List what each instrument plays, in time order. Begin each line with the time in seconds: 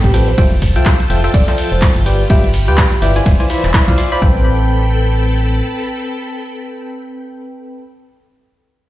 Already playing: fm electric piano A2 C4 A4 B4 G5, string machine A4 G5 B5
0.04 fm bass A1, grand piano G4, kick, closed hi-hat
0.14 fm electric piano F3 C4 A4 B4 G5, grand piano G4, open hi-hat
0.28 grand piano C5, closed hi-hat
0.38 fm bass F1, fm electric piano F3 F4 A4 E5 G5, string machine F4 E6 G6 A6, kick, closed hi-hat, ride
0.62 kick, open hi-hat
0.76 fm bass C2, fm electric piano F3 F4 A4 E5 G5, closed hi-hat
0.85 kick, clap, closed hi-hat, ride
1.00 closed hi-hat
1.10 fm bass F1, fm electric piano F3 F4 A4 E5 G5, open hi-hat
1.24 fm electric piano F3 F4 A4 E5 G5, closed hi-hat
1.34 fm bass F1, grand piano D5, kick, closed hi-hat, ride
1.48 fm electric piano F3 F4 A4 E5 G5, clap, closed hi-hat
1.58 open hi-hat
1.72 fm bass F1, grand piano C5, closed hi-hat
1.82 kick, clap, closed hi-hat, ride
1.96 fm bass G1, closed hi-hat
2.06 fm electric piano G3 F4 B4 D5 G5, string machine G4 B5, open hi-hat
2.20 closed hi-hat
2.30 fm bass G1, fm electric piano G3 F4 B4 D5 G5, grand piano E5, kick, closed hi-hat, ride
2.44 closed hi-hat
2.54 open hi-hat
2.68 fm bass D2, fm electric piano G3 F4 B4 D5 G5, closed hi-hat
2.77 kick, clap, closed hi-hat, ride
2.92 closed hi-hat
3.02 fm bass G1, fm electric piano E3 F4 B4 D5 G5, grand piano E5, open hi-hat
3.16 fm electric piano E3 F4 C5 D5 G#5, closed hi-hat
3.26 fm bass E1, string machine D5 E5 G#5, kick, closed hi-hat, ride
3.40 fm electric piano E3 F4 C5 D5 G#5, closed hi-hat
3.50 fm electric piano E3 F4 C5 D5 B5, open hi-hat
3.64 fm bass E1, clap, closed hi-hat
3.74 fm electric piano E3 F4 C5 D5 B5, kick, clap, closed hi-hat, ride
3.88 fm bass B1, fm electric piano E3 F4 C5 D5 F5, kick, closed hi-hat
3.98 fm electric piano F4 C5 D5 C6, open hi-hat
4.12 fm electric piano F4 C5 D5 B5, closed hi-hat
4.22 fm bass A1, fm electric piano C4 A4 B4 G5, string machine A4 G5 B5, kick